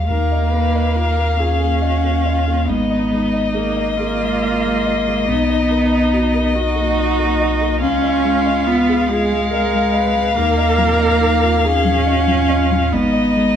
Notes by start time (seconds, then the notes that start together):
Already playing: F#3 F#4
0.09 D#2 A#3 A#4 F5
0.32 D#5
0.52 A#3 B4
0.75 D#5
0.95 F4 A#4
1.17 A#4
1.36 C#4 F4 G#4
1.61 A#3
1.82 F#4 D#5
2.04 A#3
2.25 F4 D#5
2.48 A#3
2.67 G#1 G#2 B3 D#4 D#5
2.90 D#5
3.11 G#3
3.33 D#5
3.52 A#3 G#4
3.77 D#5
3.97 A#3 F4 G#4
4.21 G#3
4.43 D#5
4.65 G#3
4.86 D#5
5.07 G#3
5.27 B1 B3 D#4
5.49 D#5
5.71 A#4
5.92 D#5
6.13 F#4
6.34 A#4
6.53 D#4 F#4
6.76 A#3
6.97 D#5
7.19 A#3
7.40 D#5
7.61 A#3
7.80 C#2 C#4 F4 F5
8.02 D#5
8.24 G#3
8.46 D#5
8.67 B3 F4
8.89 G#4
9.08 G#3 F4 G#4
9.31 G#3
9.52 A#4 D#5
9.73 G#3
9.93 B4 D#5
10.14 G#3
10.35 D#2 A#3 A#4
10.57 D#5
10.78 F3
10.99 D#5
11.20 D#4
11.42 F4
11.63 C#4 D#4 G#4
11.84 F3
12.06 F#4 D#5
12.27 F3
12.49 F4 D#5
12.71 F3
12.92 G#1 G#2 B3 D#4 D#5
13.13 D#5
13.36 G#3